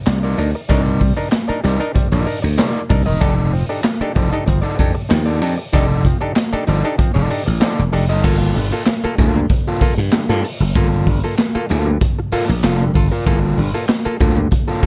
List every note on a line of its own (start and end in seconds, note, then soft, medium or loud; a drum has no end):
0.07 0.33 C2 medium
0.07 0.19 C3 soft
0.07 0.19 G3 medium
0.07 muted overdriven electric guitar stroke soft
0.07 snare loud
0.07 clap medium
0.07 closed hi-hat loud
0.23 0.37 D#4 medium
0.23 0.38 A#4 medium
0.23 0.38 D5 medium
0.38 0.52 D2 medium
0.38 0.51 D4 medium
0.38 0.51 D#4 medium
0.38 0.51 A#4 medium
0.38 muted overdriven electric guitar stroke soft
0.38 open hi-hat medium
0.55 0.61 D#4 soft
0.55 0.61 A#4 medium
0.55 muted overdriven electric guitar stroke soft
0.69 1.10 C2 loud
0.69 0.81 D4 medium
0.69 0.82 D4 medium
0.69 0.82 D#4 medium
0.69 0.82 A4 medium
0.69 0.82 A#4 loud
0.69 0.82 C#5 medium
0.69 kick loud
0.69 closed hi-hat loud
0.81 0.98 D#4 medium
0.81 0.99 A#4 medium
0.81 0.99 D5 medium
1.00 1.13 C3 medium
1.00 1.13 G3 medium
1.00 kick medium
1.00 open hi-hat medium
1.17 1.28 D4 medium
1.17 1.28 D#4 medium
1.17 1.29 A#4 medium
1.17 muted overdriven electric guitar stroke medium
1.32 muted overdriven electric guitar stroke soft
1.32 snare loud
1.32 clap medium
1.32 closed hi-hat medium
1.48 1.60 D4 medium
1.48 1.60 D#4 medium
1.48 1.60 A#4 medium
1.48 muted overdriven electric guitar stroke medium
1.48 muted slap bass stroke medium
1.64 1.78 C2 medium
1.64 1.76 C3 medium
1.64 1.76 G3 medium
1.64 1.83 D#4 medium
1.64 1.79 A#4 medium
1.64 1.79 D5 medium
1.64 closed hi-hat medium
1.80 1.91 D4 medium
1.80 1.92 D#4 medium
1.80 1.92 A#4 medium
1.80 muted overdriven electric guitar stroke soft
1.94 2.08 C3 medium
1.94 2.08 G3 medium
1.94 muted overdriven electric guitar stroke soft
1.94 kick medium
1.94 closed hi-hat medium
2.12 2.25 A#1 medium
2.12 2.25 D#4 medium
2.12 2.26 A#4 medium
2.12 2.26 D5 medium
2.26 2.39 D4 medium
2.26 2.39 D#4 medium
2.26 2.39 A#4 medium
2.26 muted overdriven electric guitar stroke soft
2.26 open hi-hat medium
2.42 2.56 D2 medium
2.42 2.49 D#4 soft
2.42 2.49 A#4 soft
2.42 muted overdriven electric guitar stroke medium
2.58 2.71 C3 medium
2.58 2.71 G3 medium
2.58 2.79 D#4 medium
2.58 2.79 A#4 medium
2.58 2.80 D5 loud
2.58 snare loud
2.58 clap medium
2.58 closed hi-hat loud
2.89 3.04 C2 medium
2.89 3.02 D4 medium
2.89 3.02 D#4 medium
2.89 3.03 A#4 medium
2.89 muted overdriven electric guitar stroke soft
2.89 kick medium
2.89 open hi-hat medium
3.06 3.19 E1 medium
3.06 3.13 D#4 soft
3.06 3.20 D#4 medium
3.06 3.13 A#4 soft
3.06 3.20 A#4 medium
3.06 3.20 D#5 medium
3.21 3.62 F1 loud
3.21 3.34 D4 medium
3.21 3.50 D#4 medium
3.21 3.34 D#4 medium
3.21 3.34 G4 medium
3.21 3.34 A4 loud
3.21 3.51 A4 medium
3.21 3.51 D5 medium
3.21 kick loud
3.21 closed hi-hat loud
3.53 3.66 F3 medium
3.53 3.65 C4 medium
3.53 open hi-hat medium
3.69 3.81 D4 medium
3.69 3.81 D#4 medium
3.69 3.81 G4 medium
3.69 3.81 A4 medium
3.69 muted overdriven electric guitar stroke soft
3.84 muted overdriven electric guitar stroke soft
3.84 snare loud
3.84 clap medium
3.84 closed hi-hat medium
4.01 4.12 D4 medium
4.01 4.12 D#4 medium
4.01 4.12 G4 medium
4.01 4.12 A4 medium
4.01 muted slap bass stroke medium
4.01 muted overdriven electric guitar stroke medium
4.15 4.30 F1 loud
4.15 4.29 F3 medium
4.15 4.29 C4 medium
4.15 4.34 D#4 medium
4.15 4.32 A4 loud
4.15 4.31 D5 medium
4.15 kick loud
4.15 closed hi-hat medium
4.32 4.44 D4 medium
4.32 4.44 D#4 medium
4.32 4.44 G4 medium
4.32 4.44 A4 medium
4.32 muted overdriven electric guitar stroke soft
4.46 4.61 G1 loud
4.46 4.60 F3 medium
4.46 4.60 C4 medium
4.46 muted overdriven electric guitar stroke soft
4.46 kick medium
4.46 closed hi-hat loud
4.62 4.76 D#4 medium
4.62 4.76 A4 medium
4.62 4.77 D5 medium
4.77 4.93 F2 loud
4.77 4.91 D4 medium
4.77 4.92 D#4 medium
4.77 4.92 G4 medium
4.77 4.92 A4 medium
4.77 muted overdriven electric guitar stroke medium
4.77 kick medium
4.77 open hi-hat medium
4.95 5.02 G4 soft
4.95 5.02 A4 soft
4.95 muted overdriven electric guitar stroke medium
5.09 5.41 D#2 loud
5.09 5.23 F3 medium
5.09 5.23 C4 medium
5.09 muted overdriven electric guitar stroke soft
5.09 snare loud
5.09 clap loud
5.09 closed hi-hat loud
5.26 5.39 D#4 medium
5.26 5.40 A4 medium
5.26 5.40 D5 medium
5.41 5.56 F2 medium
5.41 5.54 D4 medium
5.41 5.55 D#4 medium
5.41 5.55 G4 medium
5.41 5.55 A4 medium
5.41 muted overdriven electric guitar stroke soft
5.41 open hi-hat medium
5.58 5.65 G4 soft
5.58 5.65 A4 soft
5.58 muted overdriven electric guitar stroke soft
5.73 6.14 F1 loud
5.73 5.86 D4 medium
5.73 6.02 D#4 medium
5.73 5.86 D#4 medium
5.73 5.86 G4 medium
5.73 6.02 A4 medium
5.73 5.86 A4 loud
5.73 6.03 D5 loud
5.73 kick loud
5.73 closed hi-hat loud
6.05 6.17 F3 medium
6.05 6.17 C4 medium
6.05 kick medium
6.05 closed hi-hat medium
6.21 6.32 D4 medium
6.21 6.32 D#4 medium
6.21 6.32 G4 medium
6.21 6.32 A4 medium
6.21 muted overdriven electric guitar stroke soft
6.36 muted overdriven electric guitar stroke soft
6.36 snare loud
6.36 clap medium
6.36 closed hi-hat medium
6.53 6.64 D4 medium
6.53 6.64 D#4 medium
6.53 6.64 G4 medium
6.53 6.64 A4 medium
6.53 muted overdriven electric guitar stroke soft
6.53 muted slap bass stroke medium
6.67 6.82 G1 loud
6.67 6.80 F3 medium
6.67 6.80 C4 medium
6.67 6.86 D#4 medium
6.67 6.84 A4 medium
6.67 6.83 D5 medium
6.67 closed hi-hat medium
6.84 6.95 D4 medium
6.84 6.95 D#4 medium
6.84 6.95 G4 medium
6.84 6.95 A4 medium
6.84 muted overdriven electric guitar stroke medium
6.98 7.12 F3 medium
6.98 7.12 C4 medium
6.98 muted overdriven electric guitar stroke medium
6.98 kick medium
6.98 closed hi-hat medium
7.14 7.28 F1 loud
7.14 7.28 D#4 medium
7.14 7.29 A4 medium
7.14 7.29 D5 loud
7.29 7.43 D4 medium
7.29 7.43 D#4 medium
7.29 7.43 G4 medium
7.29 7.43 A4 medium
7.29 muted overdriven electric guitar stroke soft
7.29 open hi-hat medium
7.46 7.60 A1 loud
7.46 7.53 G4 soft
7.46 7.53 A4 soft
7.46 muted overdriven electric guitar stroke soft
7.60 7.74 F3 medium
7.60 7.74 C4 medium
7.60 7.80 D#4 medium
7.60 7.80 A4 medium
7.60 7.81 D5 loud
7.60 snare loud
7.60 clap loud
7.60 closed hi-hat medium
7.79 7.91 E1 loud
7.92 8.10 F1 medium
7.92 8.05 D4 medium
7.92 8.06 D#4 medium
7.92 8.06 G4 medium
7.92 8.06 A4 medium
7.92 muted overdriven electric guitar stroke medium
7.92 open hi-hat medium
8.09 8.22 F#1 loud
8.09 8.23 D#4 medium
8.09 8.16 G4 soft
8.09 8.23 A4 medium
8.09 8.16 A4 medium
8.09 8.23 D#5 medium
8.24 8.51 G1 loud
8.24 8.53 A#3 medium
8.24 8.37 A#3 loud
8.24 8.37 F4 medium
8.24 8.54 F4 medium
8.24 8.37 A4 loud
8.24 8.54 A4 medium
8.24 kick loud
8.24 crash loud
8.56 8.70 G1 loud
8.56 8.68 G2 medium
8.56 8.68 D3 medium
8.56 open hi-hat medium
8.72 8.83 A#3 medium
8.72 8.84 F4 medium
8.72 8.84 A4 medium
8.72 muted overdriven electric guitar stroke soft
8.86 muted overdriven electric guitar stroke soft
8.86 snare loud
8.86 clap medium
8.86 closed hi-hat medium
9.04 9.15 A#3 medium
9.04 9.15 F4 medium
9.04 9.15 A4 medium
9.04 muted overdriven electric guitar stroke medium
9.04 muted slap bass stroke medium
9.18 9.45 D2 medium
9.18 9.39 A#3 loud
9.18 9.36 F4 medium
9.18 9.34 A4 medium
9.18 kick medium
9.18 closed hi-hat medium
9.35 9.46 G2 medium
9.35 9.46 D3 medium
9.35 muted overdriven electric guitar stroke soft
9.50 muted overdriven electric guitar stroke soft
9.50 kick medium
9.50 closed hi-hat medium
9.68 9.80 A#3 medium
9.68 9.81 F4 medium
9.68 9.81 A4 medium
9.81 9.94 A#3 medium
9.81 9.94 F4 medium
9.81 9.94 A4 medium
9.81 muted slap bass stroke soft
9.81 muted overdriven electric guitar stroke soft
9.81 kick medium
9.81 open hi-hat medium
9.97 10.10 G2 medium
9.97 muted overdriven electric guitar stroke soft
10.12 10.25 G2 medium
10.12 10.25 D3 medium
10.12 muted overdriven electric guitar stroke soft
10.12 snare loud
10.12 clap medium
10.12 closed hi-hat loud
10.29 10.42 G2 loud
10.29 10.40 A#3 medium
10.29 10.44 A#3 medium
10.29 10.41 F4 medium
10.29 10.44 F4 medium
10.29 10.45 A4 medium
10.29 10.41 A4 medium
10.44 10.51 F4 soft
10.44 10.51 A4 soft
10.44 muted overdriven electric guitar stroke soft
10.44 open hi-hat medium
10.60 10.73 F#1 medium
10.60 muted overdriven electric guitar stroke soft
10.75 11.02 G1 loud
10.75 10.88 A#3 loud
10.75 11.05 A#3 medium
10.75 10.88 F4 medium
10.75 11.05 F4 loud
10.75 10.88 A4 loud
10.75 11.05 A4 medium
10.75 kick loud
10.75 closed hi-hat loud
11.07 11.21 G1 loud
11.07 11.19 G2 medium
11.07 11.19 D3 medium
11.07 kick medium
11.07 open hi-hat medium
11.24 11.35 A#3 medium
11.24 11.35 F4 medium
11.24 11.35 A4 medium
11.24 muted overdriven electric guitar stroke medium
11.38 muted overdriven electric guitar stroke soft
11.38 snare loud
11.38 clap medium
11.38 closed hi-hat medium
11.55 11.66 A#3 medium
11.55 11.66 F4 medium
11.55 11.66 A4 medium
11.55 muted slap bass stroke soft
11.55 muted overdriven electric guitar stroke medium
11.70 11.97 D2 loud
11.70 11.90 A#3 medium
11.70 11.87 F4 medium
11.70 11.86 A4 medium
11.70 closed hi-hat medium
11.87 11.97 G2 medium
11.87 11.97 D3 medium
11.87 muted overdriven electric guitar stroke medium
12.01 muted overdriven electric guitar stroke medium
12.01 kick medium
12.01 closed hi-hat medium
12.19 muted overdriven electric guitar stroke soft
12.32 12.51 A#3 loud
12.32 12.45 A#3 medium
12.32 12.45 F4 medium
12.32 12.49 F4 loud
12.32 12.45 A4 loud
12.32 12.48 A4 loud
12.32 muted slap bass stroke soft
12.32 open hi-hat medium
12.49 12.61 A#1 medium
12.49 muted overdriven electric guitar stroke soft
12.63 12.90 F1 loud
12.63 12.82 A#3 loud
12.63 12.76 F4 medium
12.63 12.83 F4 loud
12.63 12.76 A4 medium
12.63 12.83 A4 medium
12.63 snare loud
12.63 clap medium
12.63 closed hi-hat loud
12.81 12.92 G2 medium
12.81 12.92 D3 medium
12.94 13.09 G1 medium
12.94 13.08 F4 medium
12.94 13.08 A4 medium
12.94 muted overdriven electric guitar stroke soft
12.94 kick loud
12.94 open hi-hat medium
13.12 13.25 A#3 medium
13.12 13.25 F4 medium
13.12 13.25 A#4 medium
13.26 13.53 G1 loud
13.26 13.38 A3 medium
13.26 13.39 A#3 loud
13.26 13.39 E4 medium
13.26 13.39 F4 medium
13.26 13.39 G#4 loud
13.26 13.39 A4 loud
13.26 kick loud
13.26 closed hi-hat loud
13.38 13.55 A#3 medium
13.38 13.55 F4 medium
13.38 13.56 A4 loud
13.58 13.72 G1 loud
13.58 13.70 G2 medium
13.58 13.70 D3 medium
13.58 open hi-hat medium
13.74 13.85 A#3 medium
13.74 13.85 F4 medium
13.74 13.86 A4 medium
13.74 muted overdriven electric guitar stroke medium
13.89 muted overdriven electric guitar stroke soft
13.89 snare loud
13.89 clap medium
13.89 closed hi-hat medium
14.05 14.16 A#3 medium
14.05 14.16 F4 medium
14.05 14.17 A4 medium
14.05 muted overdriven electric guitar stroke medium
14.05 muted slap bass stroke medium
14.20 14.47 D2 medium
14.20 14.39 A#3 medium
14.20 14.37 F4 medium
14.20 14.36 A4 medium
14.20 kick loud
14.20 closed hi-hat medium
14.37 14.48 G2 medium
14.37 14.48 D3 medium
14.37 muted overdriven electric guitar stroke medium
14.52 muted overdriven electric guitar stroke soft
14.52 kick medium
14.52 closed hi-hat medium
14.68 14.82 A#3 medium
14.68 14.82 F4 medium
14.68 14.82 A4 loud
14.83 14.86 A#3 medium
14.83 14.86 F4 medium
14.83 muted slap bass stroke soft
14.83 muted overdriven electric guitar stroke soft
14.83 open hi-hat medium